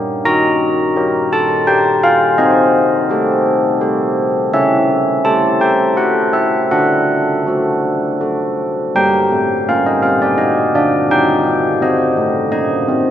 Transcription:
0, 0, Header, 1, 2, 480
1, 0, Start_track
1, 0, Key_signature, -2, "minor"
1, 0, Tempo, 705053
1, 185, Time_signature, 3, 2, 24, 8
1, 2586, Tempo, 724638
1, 4026, Tempo, 745342
1, 5946, Tempo, 722022
1, 7386, Tempo, 704225
1, 8740, End_track
2, 0, Start_track
2, 0, Title_t, "Church bells"
2, 0, Program_c, 0, 14
2, 0, Note_on_c, 0, 67, 51
2, 0, Note_on_c, 0, 70, 52
2, 152, Note_off_c, 0, 67, 0
2, 154, Note_off_c, 0, 70, 0
2, 172, Note_on_c, 0, 63, 80
2, 173, Note_on_c, 0, 82, 122
2, 644, Note_off_c, 0, 63, 0
2, 655, Note_on_c, 0, 67, 54
2, 658, Note_on_c, 0, 70, 64
2, 873, Note_off_c, 0, 82, 0
2, 903, Note_on_c, 0, 81, 92
2, 1115, Note_off_c, 0, 67, 0
2, 1117, Note_off_c, 0, 70, 0
2, 1136, Note_off_c, 0, 81, 0
2, 1139, Note_on_c, 0, 79, 96
2, 1140, Note_on_c, 0, 67, 50
2, 1141, Note_on_c, 0, 70, 51
2, 1373, Note_off_c, 0, 79, 0
2, 1386, Note_on_c, 0, 77, 106
2, 1597, Note_off_c, 0, 67, 0
2, 1597, Note_off_c, 0, 70, 0
2, 1617, Note_off_c, 0, 77, 0
2, 1621, Note_on_c, 0, 75, 95
2, 1625, Note_on_c, 0, 60, 77
2, 2091, Note_off_c, 0, 60, 0
2, 2109, Note_on_c, 0, 67, 58
2, 2116, Note_on_c, 0, 69, 68
2, 2561, Note_off_c, 0, 67, 0
2, 2565, Note_off_c, 0, 69, 0
2, 2594, Note_on_c, 0, 67, 59
2, 2596, Note_on_c, 0, 69, 54
2, 2795, Note_off_c, 0, 75, 0
2, 3042, Note_off_c, 0, 67, 0
2, 3043, Note_off_c, 0, 69, 0
2, 3074, Note_on_c, 0, 61, 79
2, 3074, Note_on_c, 0, 76, 98
2, 3530, Note_off_c, 0, 76, 0
2, 3535, Note_off_c, 0, 61, 0
2, 3546, Note_on_c, 0, 81, 96
2, 3548, Note_on_c, 0, 67, 60
2, 3551, Note_on_c, 0, 69, 62
2, 3776, Note_off_c, 0, 81, 0
2, 3786, Note_on_c, 0, 79, 79
2, 4001, Note_off_c, 0, 67, 0
2, 4003, Note_off_c, 0, 69, 0
2, 4017, Note_off_c, 0, 79, 0
2, 4024, Note_on_c, 0, 78, 81
2, 4027, Note_on_c, 0, 67, 48
2, 4030, Note_on_c, 0, 69, 55
2, 4253, Note_off_c, 0, 78, 0
2, 4258, Note_on_c, 0, 76, 89
2, 4479, Note_off_c, 0, 67, 0
2, 4481, Note_off_c, 0, 69, 0
2, 4492, Note_off_c, 0, 76, 0
2, 4503, Note_on_c, 0, 78, 91
2, 4506, Note_on_c, 0, 62, 72
2, 4975, Note_off_c, 0, 62, 0
2, 4989, Note_on_c, 0, 66, 47
2, 4994, Note_on_c, 0, 69, 53
2, 5441, Note_off_c, 0, 66, 0
2, 5444, Note_off_c, 0, 69, 0
2, 5466, Note_on_c, 0, 66, 44
2, 5466, Note_on_c, 0, 69, 51
2, 5682, Note_off_c, 0, 78, 0
2, 5921, Note_off_c, 0, 66, 0
2, 5921, Note_off_c, 0, 69, 0
2, 5945, Note_on_c, 0, 55, 62
2, 5949, Note_on_c, 0, 79, 95
2, 5950, Note_on_c, 0, 70, 48
2, 6139, Note_off_c, 0, 55, 0
2, 6187, Note_on_c, 0, 57, 52
2, 6379, Note_off_c, 0, 57, 0
2, 6410, Note_off_c, 0, 79, 0
2, 6433, Note_on_c, 0, 58, 59
2, 6434, Note_on_c, 0, 77, 79
2, 6550, Note_off_c, 0, 77, 0
2, 6550, Note_on_c, 0, 75, 66
2, 6620, Note_off_c, 0, 58, 0
2, 6656, Note_on_c, 0, 60, 48
2, 6657, Note_on_c, 0, 77, 76
2, 6667, Note_off_c, 0, 75, 0
2, 6779, Note_off_c, 0, 77, 0
2, 6787, Note_on_c, 0, 74, 71
2, 6849, Note_off_c, 0, 60, 0
2, 6891, Note_on_c, 0, 63, 51
2, 6893, Note_on_c, 0, 75, 79
2, 6903, Note_off_c, 0, 74, 0
2, 7089, Note_off_c, 0, 63, 0
2, 7129, Note_off_c, 0, 75, 0
2, 7141, Note_on_c, 0, 62, 67
2, 7142, Note_on_c, 0, 74, 79
2, 7336, Note_off_c, 0, 62, 0
2, 7361, Note_off_c, 0, 70, 0
2, 7375, Note_on_c, 0, 70, 47
2, 7376, Note_off_c, 0, 74, 0
2, 7378, Note_on_c, 0, 63, 69
2, 7381, Note_on_c, 0, 79, 90
2, 7575, Note_off_c, 0, 63, 0
2, 7620, Note_on_c, 0, 62, 53
2, 7815, Note_off_c, 0, 62, 0
2, 7846, Note_off_c, 0, 79, 0
2, 7859, Note_on_c, 0, 60, 65
2, 7865, Note_on_c, 0, 75, 82
2, 8054, Note_off_c, 0, 60, 0
2, 8100, Note_on_c, 0, 57, 57
2, 8294, Note_off_c, 0, 57, 0
2, 8326, Note_off_c, 0, 75, 0
2, 8339, Note_on_c, 0, 58, 56
2, 8339, Note_on_c, 0, 75, 82
2, 8534, Note_off_c, 0, 58, 0
2, 8588, Note_on_c, 0, 60, 69
2, 8740, Note_off_c, 0, 60, 0
2, 8740, Note_off_c, 0, 70, 0
2, 8740, Note_off_c, 0, 75, 0
2, 8740, End_track
0, 0, End_of_file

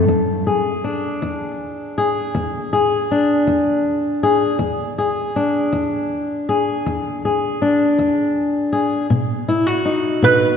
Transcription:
0, 0, Header, 1, 3, 480
1, 0, Start_track
1, 0, Tempo, 750939
1, 56, Time_signature, 12, 3, 24, 8
1, 6756, End_track
2, 0, Start_track
2, 0, Title_t, "Resonator guitar played with a steel bar"
2, 0, Program_c, 0, 25
2, 6545, Note_on_c, 0, 71, 85
2, 6756, Note_off_c, 0, 71, 0
2, 6756, End_track
3, 0, Start_track
3, 0, Title_t, "Steel-string acoustic guitar"
3, 0, Program_c, 1, 25
3, 54, Note_on_c, 1, 40, 74
3, 298, Note_on_c, 1, 68, 65
3, 489, Note_off_c, 1, 40, 0
3, 539, Note_on_c, 1, 62, 62
3, 781, Note_on_c, 1, 40, 79
3, 1214, Note_off_c, 1, 40, 0
3, 1262, Note_off_c, 1, 68, 0
3, 1264, Note_on_c, 1, 68, 69
3, 1499, Note_on_c, 1, 40, 74
3, 1736, Note_off_c, 1, 68, 0
3, 1744, Note_on_c, 1, 68, 70
3, 1934, Note_off_c, 1, 40, 0
3, 1983, Note_off_c, 1, 62, 0
3, 1991, Note_on_c, 1, 62, 59
3, 2220, Note_on_c, 1, 40, 73
3, 2654, Note_off_c, 1, 40, 0
3, 2698, Note_off_c, 1, 68, 0
3, 2705, Note_on_c, 1, 68, 68
3, 2916, Note_off_c, 1, 68, 0
3, 2919, Note_off_c, 1, 62, 0
3, 2934, Note_on_c, 1, 40, 70
3, 3186, Note_on_c, 1, 68, 64
3, 3371, Note_off_c, 1, 40, 0
3, 3427, Note_on_c, 1, 62, 60
3, 3660, Note_on_c, 1, 40, 73
3, 4094, Note_off_c, 1, 40, 0
3, 4140, Note_off_c, 1, 68, 0
3, 4148, Note_on_c, 1, 68, 67
3, 4387, Note_on_c, 1, 40, 78
3, 4625, Note_off_c, 1, 68, 0
3, 4635, Note_on_c, 1, 68, 63
3, 4816, Note_off_c, 1, 40, 0
3, 4861, Note_off_c, 1, 62, 0
3, 4869, Note_on_c, 1, 62, 56
3, 5104, Note_on_c, 1, 40, 72
3, 5533, Note_off_c, 1, 40, 0
3, 5570, Note_off_c, 1, 68, 0
3, 5577, Note_on_c, 1, 68, 67
3, 5789, Note_off_c, 1, 68, 0
3, 5794, Note_off_c, 1, 62, 0
3, 5818, Note_on_c, 1, 47, 69
3, 6063, Note_on_c, 1, 64, 67
3, 6179, Note_off_c, 1, 64, 0
3, 6179, Note_on_c, 1, 66, 52
3, 6248, Note_off_c, 1, 47, 0
3, 6299, Note_on_c, 1, 63, 59
3, 6536, Note_on_c, 1, 47, 72
3, 6756, Note_off_c, 1, 47, 0
3, 6756, Note_off_c, 1, 63, 0
3, 6756, Note_off_c, 1, 66, 0
3, 6756, End_track
0, 0, End_of_file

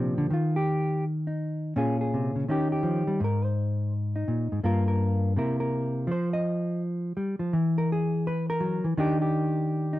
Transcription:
0, 0, Header, 1, 2, 480
1, 0, Start_track
1, 0, Key_signature, -3, "major"
1, 0, Tempo, 361011
1, 399, Time_signature, 4, 2, 24, 8
1, 13288, End_track
2, 0, Start_track
2, 0, Title_t, "Hollow-body jazz guitar"
2, 0, Program_c, 0, 26
2, 0, Note_on_c, 0, 46, 81
2, 0, Note_on_c, 0, 48, 68
2, 0, Note_on_c, 0, 53, 67
2, 0, Note_on_c, 0, 62, 67
2, 0, Note_on_c, 0, 67, 62
2, 0, Note_on_c, 0, 72, 70
2, 226, Note_off_c, 0, 48, 0
2, 238, Note_on_c, 0, 50, 73
2, 377, Note_off_c, 0, 46, 0
2, 393, Note_off_c, 0, 62, 0
2, 394, Note_off_c, 0, 67, 0
2, 395, Note_off_c, 0, 72, 0
2, 399, Note_off_c, 0, 50, 0
2, 404, Note_on_c, 0, 51, 80
2, 408, Note_off_c, 0, 53, 0
2, 445, Note_on_c, 0, 65, 70
2, 732, Note_off_c, 0, 65, 0
2, 748, Note_on_c, 0, 67, 78
2, 1380, Note_off_c, 0, 67, 0
2, 1691, Note_on_c, 0, 63, 46
2, 2305, Note_off_c, 0, 51, 0
2, 2312, Note_off_c, 0, 63, 0
2, 2340, Note_on_c, 0, 46, 83
2, 2347, Note_on_c, 0, 61, 67
2, 2360, Note_on_c, 0, 65, 67
2, 2367, Note_on_c, 0, 68, 77
2, 2653, Note_off_c, 0, 68, 0
2, 2673, Note_on_c, 0, 68, 63
2, 2844, Note_on_c, 0, 48, 66
2, 3129, Note_off_c, 0, 48, 0
2, 3134, Note_on_c, 0, 49, 59
2, 3274, Note_off_c, 0, 46, 0
2, 3274, Note_off_c, 0, 61, 0
2, 3283, Note_off_c, 0, 65, 0
2, 3284, Note_off_c, 0, 68, 0
2, 3295, Note_off_c, 0, 49, 0
2, 3303, Note_on_c, 0, 51, 68
2, 3317, Note_on_c, 0, 61, 59
2, 3325, Note_on_c, 0, 63, 62
2, 3340, Note_on_c, 0, 67, 68
2, 3613, Note_off_c, 0, 67, 0
2, 3618, Note_on_c, 0, 67, 60
2, 3762, Note_on_c, 0, 53, 70
2, 4073, Note_off_c, 0, 53, 0
2, 4087, Note_on_c, 0, 55, 68
2, 4234, Note_off_c, 0, 51, 0
2, 4241, Note_off_c, 0, 61, 0
2, 4245, Note_off_c, 0, 63, 0
2, 4251, Note_off_c, 0, 55, 0
2, 4257, Note_on_c, 0, 44, 78
2, 4297, Note_off_c, 0, 67, 0
2, 4311, Note_on_c, 0, 70, 80
2, 4583, Note_off_c, 0, 70, 0
2, 4583, Note_on_c, 0, 72, 84
2, 5219, Note_off_c, 0, 72, 0
2, 5526, Note_on_c, 0, 63, 50
2, 5683, Note_off_c, 0, 44, 0
2, 5689, Note_on_c, 0, 46, 72
2, 5996, Note_off_c, 0, 46, 0
2, 6010, Note_on_c, 0, 44, 65
2, 6150, Note_off_c, 0, 63, 0
2, 6158, Note_off_c, 0, 44, 0
2, 6163, Note_on_c, 0, 43, 83
2, 6169, Note_on_c, 0, 58, 69
2, 6182, Note_on_c, 0, 65, 69
2, 6190, Note_on_c, 0, 70, 81
2, 6471, Note_off_c, 0, 70, 0
2, 6487, Note_on_c, 0, 70, 63
2, 7111, Note_off_c, 0, 70, 0
2, 7114, Note_off_c, 0, 65, 0
2, 7124, Note_off_c, 0, 43, 0
2, 7127, Note_off_c, 0, 58, 0
2, 7133, Note_on_c, 0, 48, 71
2, 7144, Note_on_c, 0, 58, 58
2, 7155, Note_on_c, 0, 64, 61
2, 7162, Note_on_c, 0, 70, 65
2, 7431, Note_off_c, 0, 70, 0
2, 7447, Note_on_c, 0, 70, 64
2, 8071, Note_off_c, 0, 70, 0
2, 8074, Note_on_c, 0, 53, 80
2, 8079, Note_off_c, 0, 64, 0
2, 8089, Note_off_c, 0, 48, 0
2, 8094, Note_off_c, 0, 58, 0
2, 8130, Note_on_c, 0, 72, 78
2, 8416, Note_off_c, 0, 72, 0
2, 8421, Note_on_c, 0, 75, 86
2, 9058, Note_off_c, 0, 75, 0
2, 9518, Note_off_c, 0, 53, 0
2, 9529, Note_on_c, 0, 55, 65
2, 9825, Note_off_c, 0, 55, 0
2, 9831, Note_on_c, 0, 53, 63
2, 10002, Note_off_c, 0, 53, 0
2, 10014, Note_on_c, 0, 52, 87
2, 10344, Note_on_c, 0, 70, 88
2, 10499, Note_off_c, 0, 70, 0
2, 10534, Note_on_c, 0, 68, 78
2, 10988, Note_off_c, 0, 68, 0
2, 10998, Note_on_c, 0, 71, 98
2, 11289, Note_off_c, 0, 71, 0
2, 11299, Note_on_c, 0, 70, 95
2, 11439, Note_on_c, 0, 54, 69
2, 11742, Note_off_c, 0, 52, 0
2, 11750, Note_off_c, 0, 54, 0
2, 11758, Note_on_c, 0, 52, 69
2, 11765, Note_off_c, 0, 70, 0
2, 11925, Note_off_c, 0, 52, 0
2, 11933, Note_on_c, 0, 51, 84
2, 11944, Note_on_c, 0, 62, 73
2, 11949, Note_on_c, 0, 63, 73
2, 11965, Note_on_c, 0, 67, 84
2, 12249, Note_off_c, 0, 67, 0
2, 12254, Note_on_c, 0, 67, 71
2, 13200, Note_off_c, 0, 63, 0
2, 13205, Note_on_c, 0, 63, 60
2, 13288, Note_off_c, 0, 51, 0
2, 13288, Note_off_c, 0, 62, 0
2, 13288, Note_off_c, 0, 63, 0
2, 13288, Note_off_c, 0, 67, 0
2, 13288, End_track
0, 0, End_of_file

